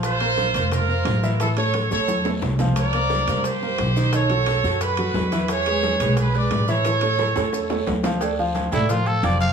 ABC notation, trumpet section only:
X:1
M:4/4
L:1/8
Q:1/4=176
K:Aphr
V:1 name="Trumpet section"
[Fc]4 [FB]4 | [EA] [A^c]2 [Ac]2 z3 | [Bd]4 [Gc]4 | [A^c]4 [^F=B]4 |
[^G^c]4 [G=B] [Bd]2 [Ac]- | [A^c]6 z2 | z8 |]